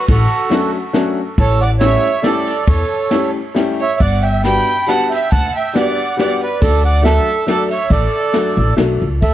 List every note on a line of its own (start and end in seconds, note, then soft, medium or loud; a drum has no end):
0.08 0.23 A1 loud
0.08 0.71 F#4 medium
0.08 0.72 F#4 medium
0.08 0.71 A4 medium
0.08 kick loud
0.08 ride medium
0.50 0.74 F#3 medium
0.50 0.74 A3 medium
0.50 0.74 C#4 medium
0.50 0.74 D4 medium
0.50 0.75 F#4 medium
0.50 snare medium
0.50 ride medium
0.93 1.17 F#3 medium
0.93 1.17 A3 medium
0.93 1.18 C#4 medium
0.93 1.18 D4 medium
0.93 1.18 F#4 loud
0.93 snare medium
0.93 ride soft
1.38 1.94 A1 loud
1.38 1.60 A4 medium
1.38 1.61 A4 medium
1.38 1.63 C#5 loud
1.38 kick loud
1.38 ride medium
1.61 1.70 D5 medium
1.61 1.71 D5 medium
1.61 1.70 F#5 loud
1.79 2.04 G3 medium
1.79 2.04 A3 medium
1.79 2.04 C#4 medium
1.79 2.05 E4 medium
1.79 2.05 G4 medium
1.79 2.20 C#5 medium
1.79 2.21 C#5 medium
1.79 2.25 E5 loud
1.79 snare medium
1.79 ride soft
2.22 2.46 G3 medium
2.22 2.47 A3 medium
2.22 2.47 C#4 medium
2.22 2.47 E4 medium
2.22 2.47 G4 medium
2.22 2.64 A4 medium
2.22 2.65 A4 medium
2.22 2.68 D5 loud
2.22 snare medium
2.22 ride soft
2.47 ride soft
2.67 2.83 E2 medium
2.67 3.31 A4 medium
2.67 3.31 C#5 medium
2.67 kick loud
2.67 ride medium
3.11 3.35 G3 medium
3.11 3.35 A3 medium
3.11 3.35 C#4 medium
3.11 3.35 E4 medium
3.11 3.36 G4 medium
3.11 snare medium
3.11 ride soft
3.55 3.79 G3 medium
3.55 3.79 A3 medium
3.55 3.79 C#4 medium
3.55 3.79 E4 medium
3.55 3.80 G4 medium
3.55 snare medium
3.55 ride soft
3.80 3.99 C#5 medium
3.80 4.02 E5 medium
4.00 4.57 G1 medium
4.00 4.22 D5 medium
4.00 4.24 F#5 loud
4.00 kick medium
4.00 ride soft
4.23 4.42 E5 medium
4.23 4.43 E5 medium
4.23 4.43 G5 medium
4.44 4.67 G3 medium
4.44 4.68 B3 medium
4.44 4.68 D4 medium
4.44 4.68 F#4 medium
4.44 4.68 G4 medium
4.44 4.85 G5 medium
4.44 4.89 B5 loud
4.44 snare medium
4.44 ride soft
4.86 5.10 G3 medium
4.86 5.11 B3 medium
4.86 5.11 D4 medium
4.86 5.11 F#4 medium
4.86 5.11 G4 medium
4.86 5.10 F#5 medium
4.86 5.12 A5 loud
4.86 snare medium
4.86 ride soft
5.10 5.29 E5 medium
5.10 5.32 G5 medium
5.10 ride soft
5.14 5.32 E5 medium
5.32 5.47 D2 medium
5.32 5.53 F#5 medium
5.32 5.54 F#5 medium
5.32 5.55 A5 loud
5.32 kick loud
5.32 ride medium
5.55 5.74 E5 medium
5.55 5.76 G5 medium
5.73 5.97 G3 medium
5.73 5.97 B3 medium
5.73 5.98 D4 medium
5.73 5.98 F#4 medium
5.73 5.98 G4 medium
5.73 6.15 D5 medium
5.73 6.16 D5 medium
5.73 6.18 F#5 medium
5.73 snare medium
5.73 ride medium
6.17 6.40 G3 medium
6.17 6.41 B3 medium
6.17 6.41 D4 medium
6.17 6.41 F#4 medium
6.17 6.41 G4 medium
6.17 6.40 D5 medium
6.17 6.42 F#5 loud
6.17 snare medium
6.17 ride medium
6.43 6.61 B4 medium
6.43 6.60 D5 medium
6.61 7.17 D2 loud
6.61 6.83 A4 medium
6.61 6.84 D5 loud
6.61 kick loud
6.61 ride medium
6.84 7.03 D5 medium
6.84 7.05 F#5 loud
7.02 7.26 F#3 medium
7.02 7.26 A3 medium
7.02 7.27 D4 medium
7.02 7.27 F#4 medium
7.02 7.27 A4 medium
7.02 7.44 A4 medium
7.02 7.45 A4 medium
7.02 7.48 E5 loud
7.02 snare medium
7.02 ride soft
7.46 7.70 F#3 medium
7.46 7.70 A3 medium
7.46 7.70 D4 medium
7.46 7.71 F#4 medium
7.46 7.69 A4 medium
7.46 7.71 A4 medium
7.46 7.69 D5 medium
7.46 snare medium
7.46 ride medium
7.70 7.89 C#5 medium
7.70 7.90 C#5 medium
7.70 7.91 E5 medium
7.70 ride medium
7.90 8.05 A1 loud
7.90 8.74 A4 medium
7.90 8.74 D5 medium
7.90 kick medium
7.90 ride medium
8.33 8.57 F#3 medium
8.33 8.57 A3 medium
8.33 8.57 D4 medium
8.33 8.57 F#4 medium
8.33 8.58 A4 medium
8.33 snare medium
8.33 ride soft
8.57 8.76 A1 medium
8.77 8.99 B1 medium
8.77 9.01 F#3 medium
8.77 9.01 A3 medium
8.77 9.02 D4 medium
8.77 9.02 F#4 medium
8.77 9.02 A4 medium
8.77 snare medium
8.77 ride soft
9.02 9.20 C#2 medium
9.22 9.34 D2 medium
9.22 9.34 A4 medium
9.22 9.34 E5 loud
9.22 kick loud
9.22 ride medium